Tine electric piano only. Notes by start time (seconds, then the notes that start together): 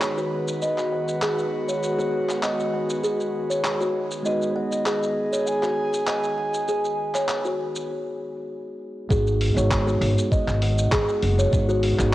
Already playing: G#3 B3 D#4 F#4
4.23 G#3 B3 D#4
4.27 F#4
9.09 G#3 B3 D#4 F#4
9.55 G#3 B3 D#4 F#4
11.52 G#3 B3 D#4 F#4
11.98 G#3 B3 D#4 F#4